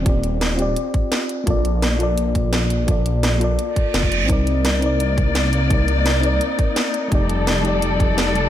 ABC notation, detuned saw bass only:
X:1
M:4/4
L:1/16
Q:1/4=170
K:Cdor
V:1 name="Detuned saw bass" clef=bass
E,,,2 E,,, E,,,4- E,,, z8 | B,,,2 B,,, B,,,4- B,,, B,,,8 | B,,,2 B,,, B,,,4- B,,, z4 F,,,3 B,,, | C,,2 C,, C,,4- C,, C,,8 |
C,,2 C,, C,,4- C,, z8 | F,,,2 F,,, F,,,4- F,,, F,,,8 |]